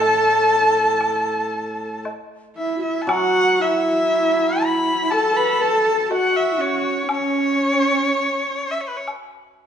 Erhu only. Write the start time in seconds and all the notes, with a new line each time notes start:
Already playing: A5
2.57 E5
2.82 E5
3.02 A5
3.10 F#5
3.62 E5
4.63 B5
5.10 A5
5.36 B5
5.62 A5
6.06 A5
6.12 F#5
6.36 E5
6.61 C#5
7.12 C#5
8.71 E5
8.81 C#5
8.88 B4
8.96 C#5